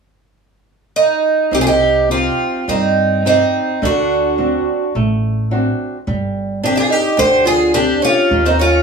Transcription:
0.96 D#4
1.51 C2 C3 D#4 G4
1.61 F4 G#4
1.67 D#4 G4
2.09 C4 D#4 F4 G4
2.68 G2 G3 C4 D#4
3.25 C4 D#4 G4
3.82 D2 D3 D4 F#4
4.38 C4 D4 F#4
4.95 A1 A3
5.51 C4 D4 F#4
6.07 G1 G3
6.63 C4 D4 G4
6.76 F4 G#4
6.90 D#4 G4
7.17 D2 D3 G4 C5
7.46 F4 G#4
7.74 C4 D4 G4
8.02 C#4 F4
8.31 D#2 D#3
8.45 C4 D#4
8.59 C#4 F4

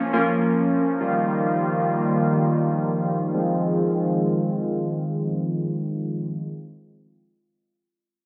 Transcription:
Already playing: F3 A#3 C#4
0.13 A#3 C#4 F4 A#4
1.00 D#3 G3 A#3 F4
3.33 D#3 F3 G#3 C4 F4

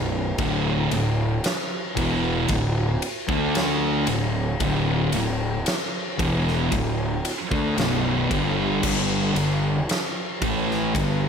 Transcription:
Already playing: B0 B1 F#2
0.38 D1 D2 A2 D3, kick, ride
0.90 D1 D2 A2, ride
1.44 snare, ride
1.96 E1 E2 B2 E3, kick, ride
2.48 D1 D2 A2, kick, ride
3.02 ride
3.28 D2 D3 A3 D4, kick
3.55 snare, ride
4.07 D1 D2 A2, ride
4.60 D1 D2 A2 D3, kick, ride
5.12 D1 D2 A2, ride
5.66 snare, ride
6.18 E1 E2 B2 E3, kick, ride
6.48 snare
6.72 D1 D2 A2, kick, ride
7.25 ride
7.51 D2 D3 A3, kick
7.77 B0 B1 F#2 B2, snare, ride
8.31 G1 G2 D3 G3, kick, ride
8.83 G1 G2 D3 G3, kick, crash
9.35 G1 G2 D3, ride
9.89 snare, ride
10.42 A1 A2 E3 A3, kick, ride
10.71 snare
10.94 G1 G2 D3, kick, ride

